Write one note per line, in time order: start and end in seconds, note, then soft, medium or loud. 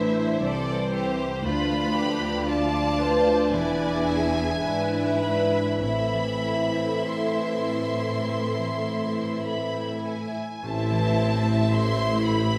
0.00 0.37 A1 soft
0.00 0.41 A2 medium
0.00 1.48 A2 soft
0.00 1.25 E3 medium
0.00 1.48 E3 soft
0.00 0.37 D4 soft
0.00 0.38 E4 soft
0.00 1.17 E4 soft
0.00 0.39 C5 medium
0.00 2.47 C5 soft
0.00 0.40 E5 medium
0.00 0.40 E5 soft
0.16 0.66 C5 soft
0.41 1.41 C2 soft
0.41 1.25 C4 soft
0.41 0.93 A4 soft
0.41 0.91 D5 medium
0.41 1.47 E5 soft
0.67 1.47 C5 soft
0.92 1.43 G4 soft
0.92 1.48 A4 soft
0.92 1.42 C5 medium
1.18 1.48 E4 soft
1.42 3.53 D2 medium
1.42 2.43 D2 soft
1.42 3.58 D3 soft
1.42 3.48 F3 soft
1.42 5.81 D4 soft
1.42 1.95 F4 medium
1.42 2.47 B4 medium
1.42 2.43 B5 medium
1.70 3.79 B3 soft
1.96 3.24 F4 soft
1.96 2.47 G4 soft
2.20 2.70 D5 soft
2.46 3.51 F4 medium
2.46 3.51 D5 soft
2.46 2.98 D5 soft
2.46 3.57 F5 soft
2.46 3.53 A5 medium
2.72 4.33 D5 soft
2.99 5.18 B4 soft
2.99 3.53 C5 medium
3.25 3.57 F4 soft
3.50 4.58 E1 soft
3.50 4.63 E2 medium
3.50 10.27 E3 medium
3.50 5.86 E3 medium
3.50 4.61 E4 soft
3.50 4.08 B4 medium
3.50 4.06 D5 medium
3.50 5.20 G#5 medium
3.80 5.86 B3 soft
4.07 5.47 E4 soft
4.07 4.62 G#4 soft
4.07 4.62 E5 soft
4.34 4.90 D5 soft
4.62 5.79 G#2 soft
4.62 5.79 E4 soft
4.62 5.79 B4 medium
4.62 7.06 E5 soft
4.62 5.79 E5 soft
4.91 5.86 D5 soft
5.19 5.86 B4 soft
5.19 5.79 B5 soft
5.49 6.43 E4 soft
5.80 7.03 A1 soft
5.80 8.28 A2 soft
5.80 10.42 A2 soft
5.80 10.28 C4 soft
5.80 10.38 E4 soft
5.80 10.04 A4 soft
5.80 10.38 E5 soft
5.80 7.04 B5 medium
6.13 8.57 E3 soft
6.45 7.98 E4 soft
6.76 7.38 C5 soft
7.07 9.43 E5 soft
7.07 9.44 C6 soft
7.39 9.14 C5 soft
7.69 10.03 A4 soft
8.00 8.85 E4 soft
8.29 10.62 A2 soft
8.58 10.69 E3 soft
8.87 10.34 E4 soft
9.15 9.73 C5 soft
9.44 11.70 E5 soft
9.44 10.00 B5 soft
9.75 11.44 C5 soft
10.04 12.21 A4 soft
10.04 10.63 G#5 soft
10.35 11.17 E4 soft
10.63 12.58 A1 medium
10.63 12.58 A2 medium
10.63 11.68 C4 soft
10.63 11.68 E4 soft
10.63 11.68 C5 soft
10.63 12.58 E5 soft
10.63 11.72 A5 medium
10.90 12.58 E3 soft
11.18 12.46 E4 soft
11.45 11.96 C5 soft
11.71 12.58 A3 soft
11.71 12.58 E4 soft
11.71 12.58 C5 soft
11.71 12.58 E5 soft
11.71 12.22 C6 medium
11.97 12.58 C5 soft
12.22 12.58 A4 soft
12.22 12.58 B5 medium
12.47 12.58 E4 soft